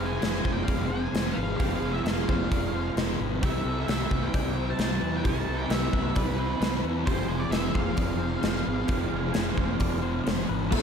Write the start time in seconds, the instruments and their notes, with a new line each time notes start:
Already playing: distorted electric guitar F2 C3 F3 C4, analog synth pad F3 C4 G#4, overdriven electric guitar G#3 C4 F4, clean electric guitar G#4
0.00 fingered electric bass F1
0.05 lead electric guitar G#5
0.20 fingered electric bass F1, clean electric guitar G#4, snare, open hi-hat
0.34 snare
0.43 fingered electric bass F1, clean electric guitar C5, kick
0.53 lead electric guitar G5
0.64 clean electric guitar D5, lead electric guitar F5
0.68 fingered electric bass F1, kick, open hi-hat
0.86 distorted electric guitar F3, clean electric guitar C5, lead electric guitar G#5
0.92 distorted electric guitar F2 C3
1.12 fingered electric bass F1, distorted electric guitar F2 C3, clean electric guitar C5, snare, open hi-hat
1.17 distorted electric guitar F3
1.33 clean electric guitar B4, lead electric guitar F5
1.37 fingered electric bass G#1
1.57 fingered electric bass F1, distorted electric guitar F2 C3, clean electric guitar G4, lead electric guitar F5, kick, open hi-hat
1.61 distorted electric guitar F3, overdriven electric guitar G#3 C4 F4
1.80 fingered electric bass F1, clean electric guitar G#4
1.93 lead electric guitar E5
2.04 fingered electric bass F1, clean electric guitar G#4, lead electric guitar F5, snare, open hi-hat
2.19 snare
2.28 fingered electric bass F1, clean electric guitar C5, kick
2.51 fingered electric bass F1, clean electric guitar D5, kick, open hi-hat
2.74 distorted electric guitar F2 C3 F3, clean electric guitar C5
2.96 fingered electric bass F1, distorted electric guitar F2 C3 F3, clean electric guitar C5, snare, open hi-hat
3.20 fingered electric bass G#1, clean electric guitar B4
3.42 fingered electric bass C2, distorted electric guitar C3 G3 C4, analog synth pad C3 E4, overdriven electric guitar E3 E4, clean electric guitar G4, lead electric guitar E5, kick, open hi-hat
3.65 fingered electric bass C2, clean electric guitar A4
3.80 lead electric guitar E5
3.88 fingered electric bass C2, clean electric guitar G4, lead electric guitar E5, snare, open hi-hat
4.11 fingered electric bass C2, clean electric guitar B4, kick
4.23 lead electric guitar G5
4.34 fingered electric bass C2, clean electric guitar D5, lead electric guitar G5, kick, open hi-hat
4.55 distorted electric guitar C3 G3 C4, clean electric guitar C5
4.70 lead electric guitar A5
4.78 fingered electric bass C2, distorted electric guitar C3 G3 C4, clean electric guitar C5, lead electric guitar A5, snare, open hi-hat
5.00 fingered electric bass E2, clean electric guitar B4
5.17 lead electric guitar G5
5.24 fingered electric bass C2, distorted electric guitar C3 G3 C4, overdriven electric guitar E3 E4, clean electric guitar G4, lead electric guitar A5, kick, open hi-hat
5.48 fingered electric bass C2, clean electric guitar A4
5.58 lead electric guitar G5
5.70 fingered electric bass C2, clean electric guitar G4, lead electric guitar E5, snare, open hi-hat
5.92 fingered electric bass C2, clean electric guitar B4, kick
6.03 lead electric guitar E5
6.15 fingered electric bass C2, lead electric guitar B4, clean electric guitar D5, kick, open hi-hat
6.37 distorted electric guitar C3 G3 C4, clean electric guitar C5
6.60 fingered electric bass C2, distorted electric guitar C3 G3 C4, clean electric guitar C5, snare, open hi-hat
6.75 snare
6.84 fingered electric bass E2, clean electric guitar B4
7.06 fingered electric bass F1, distorted electric guitar F2 C3, analog synth pad F3 C4 G#4, overdriven electric guitar G#3 C4 F4, clean electric guitar G4, lead electric guitar C5, kick, open hi-hat
7.10 distorted electric guitar F3
7.27 fingered electric bass F1, clean electric guitar G#4
7.40 lead electric guitar D5
7.49 fingered electric bass F1, clean electric guitar G#4, lead electric guitar E5, snare, open hi-hat
7.75 fingered electric bass F1, clean electric guitar C5, lead electric guitar F5, kick
7.96 fingered electric bass F1, clean electric guitar D5, kick, open hi-hat
8.19 distorted electric guitar C3 F3, clean electric guitar C5
8.23 distorted electric guitar F2
8.41 fingered electric bass F1, distorted electric guitar F2 C3, clean electric guitar C5, snare, open hi-hat
8.46 distorted electric guitar F3
8.56 snare
8.65 fingered electric bass G#1, clean electric guitar B4
8.87 fingered electric bass F1, distorted electric guitar F2 C3 F3, overdriven electric guitar G#3 C4 F4, clean electric guitar G4, kick, open hi-hat
9.10 fingered electric bass F1, clean electric guitar G#4
9.32 fingered electric bass F1, clean electric guitar G#4, snare, open hi-hat
9.55 fingered electric bass F1, clean electric guitar C5, kick
9.79 fingered electric bass F1, clean electric guitar D5, kick, open hi-hat
10.02 distorted electric guitar F2 C3 F3, clean electric guitar C5
10.26 fingered electric bass F1, distorted electric guitar F2 C3 F3, clean electric guitar C5, snare, open hi-hat
10.49 fingered electric bass G#1, clean electric guitar B4
10.71 fingered electric bass A1, distorted electric guitar A2 E3 A3, overdriven electric guitar A3 B3 E4 A4, clean electric guitar A4, kick, crash